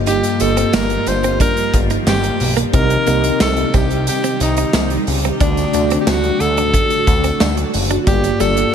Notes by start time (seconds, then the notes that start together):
Already playing: G1 G2 D#3 F3 G3 A#3 F4 G4 D#5
0.06 D#4 G4, closed hi-hat, tambourine
0.23 closed hi-hat, tambourine
0.40 G1 A#3 F4 G4 A4 D#5, muted clean electric guitar stroke, closed hi-hat, tambourine
0.57 C4, closed hi-hat
0.73 G1 A#3 A#4, snare, tambourine
0.90 closed hi-hat
1.07 G1 C5, muted clean electric guitar stroke, closed hi-hat, tambourine
1.23 C4, closed hi-hat, tambourine
1.40 D4 A#4, kick, closed hi-hat, tambourine
1.57 closed hi-hat, tambourine
1.74 G1, muted clean electric guitar stroke, kick, closed hi-hat, tambourine
1.90 D#4, closed hi-hat, tambourine
2.07 G1 C4 G4, snare, tambourine
2.24 muted clean electric guitar stroke, closed hi-hat
2.40 B1, open hi-hat, tambourine
2.57 A#3, closed hi-hat
2.73 C2 C3 C4 D#4 G4 A#4 D#5, kick, closed hi-hat, tambourine
2.90 muted clean electric guitar stroke, closed hi-hat
3.06 C2 A#3 C4 D#4 G4 D#5, closed hi-hat, tambourine
3.24 closed hi-hat
3.40 C2 A4, snare, tambourine
3.57 closed hi-hat
3.74 C2 C4 G4, kick, closed hi-hat, tambourine
3.91 closed hi-hat
4.07 G4, closed hi-hat, tambourine
4.24 C4, closed hi-hat, tambourine
4.40 C2 D#4, muted clean electric guitar stroke, closed hi-hat, tambourine
4.57 D#4, closed hi-hat
4.73 C2 A#3, snare, tambourine
4.90 muted clean electric guitar stroke, closed hi-hat
5.07 C#2, open hi-hat, tambourine
5.24 C4, closed hi-hat
5.39 D2 A2 D3 F#3 A3 D4 F#4 D5, kick, closed hi-hat, tambourine
5.57 closed hi-hat, tambourine
5.73 D2 A3 D4 F#4 D5, muted clean electric guitar stroke, closed hi-hat, tambourine
5.90 C4, closed hi-hat
6.01 G4
6.07 D2 C4 F#4, snare, tambourine
6.24 closed hi-hat
6.40 D2 A4, muted clean electric guitar stroke, closed hi-hat, tambourine
6.57 D4, closed hi-hat, tambourine
6.74 A3, kick, closed hi-hat, tambourine
6.90 closed hi-hat, tambourine
7.07 D2, muted clean electric guitar stroke, kick, closed hi-hat, tambourine
7.24 C4, closed hi-hat, tambourine
7.40 D2 D4, snare, tambourine
7.57 muted clean electric guitar stroke, closed hi-hat
7.74 F#1, open hi-hat, tambourine
7.91 D4, closed hi-hat
8.07 G1 G2 F3 G3 A#3 F4 G4 D5, kick, closed hi-hat, tambourine
8.24 muted clean electric guitar stroke, closed hi-hat, tambourine
8.40 G1 G3 A#3 F4 G4 A4 D5, closed hi-hat, tambourine
8.57 closed hi-hat